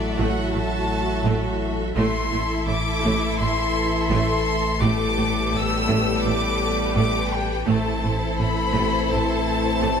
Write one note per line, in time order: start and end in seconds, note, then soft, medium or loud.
0.00 1.92 A1 medium
0.00 1.92 A2 medium
0.00 1.92 F#3 medium
0.00 1.92 A3 medium
0.00 1.92 E4 medium
0.00 1.91 F#4 medium
0.00 1.92 A4 medium
0.00 0.17 D5 medium
0.00 1.92 E5 medium
0.17 0.26 A1 medium
0.17 0.26 A2 medium
0.17 0.50 A3 medium
0.17 0.53 F#5 medium
0.53 0.61 A1 medium
0.53 0.61 A2 medium
0.53 0.61 A3 medium
0.53 1.60 A5 medium
1.24 1.33 A1 medium
1.24 1.34 A2 medium
1.24 1.58 A3 medium
1.95 7.63 A1 medium
1.95 2.04 A1 medium
1.95 2.05 A2 medium
1.95 7.49 A2 medium
1.95 4.78 E3 medium
1.95 7.50 A3 medium
1.95 2.29 A3 medium
1.95 4.81 E4 medium
1.95 4.77 E4 medium
1.95 7.63 A4 medium
1.95 4.78 E5 medium
1.95 2.63 C6 medium
2.31 2.39 A1 medium
2.31 2.40 A2 medium
2.31 2.40 A3 medium
2.67 2.75 A1 medium
2.67 2.76 A2 medium
2.67 2.76 A3 soft
2.67 3.38 D6 loud
3.02 3.11 A1 medium
3.02 3.12 A2 medium
3.02 3.36 A3 medium
3.37 3.47 A1 medium
3.37 3.47 A2 medium
3.37 3.45 A3 medium
3.37 4.09 C6 loud
4.10 4.18 A1 medium
4.10 4.19 A2 medium
4.10 4.43 A3 medium
4.10 4.80 C6 loud
4.80 4.90 A1 medium
4.80 4.90 A2 medium
4.80 7.49 G3 medium
4.80 5.14 A3 medium
4.80 7.50 B3 medium
4.80 7.63 G4 medium
4.80 7.63 B4 medium
4.80 5.53 D6 loud
5.17 5.25 A1 medium
5.17 5.26 A2 medium
5.17 5.25 A3 medium
5.52 5.61 A1 medium
5.52 5.61 A2 medium
5.52 5.60 A3 medium
5.52 6.25 E6 loud
5.88 5.97 A1 loud
5.88 5.96 A2 loud
5.88 6.23 A3 medium
6.23 6.33 A1 medium
6.23 6.33 A2 medium
6.23 6.33 A3 medium
6.23 6.94 D6 loud
6.95 7.04 A1 medium
6.95 7.04 A2 medium
6.95 7.29 A3 medium
6.95 7.31 D6 loud
7.31 7.67 G5 medium
7.66 10.00 A1 medium
7.66 7.75 A1 medium
7.66 7.75 A2 medium
7.66 10.00 A2 medium
7.66 10.00 E3 medium
7.66 8.00 A3 medium
7.66 10.00 A3 medium
7.66 10.00 C4 medium
7.66 10.00 E4 medium
7.66 10.00 A4 medium
7.66 10.00 C5 medium
7.66 8.37 A5 medium
8.02 8.11 A1 medium
8.02 8.10 A2 medium
8.02 8.10 A3 medium
8.38 8.47 A1 medium
8.38 8.46 A2 medium
8.38 8.46 A3 soft
8.38 9.08 B5 loud
8.74 8.83 A1 medium
8.74 8.82 A2 medium
8.74 9.08 A3 medium
9.09 9.20 A1 medium
9.09 9.18 A2 medium
9.09 9.18 A3 medium
9.09 10.00 A5 loud
9.80 9.91 A1 medium
9.80 9.90 A2 medium
9.80 10.00 A3 medium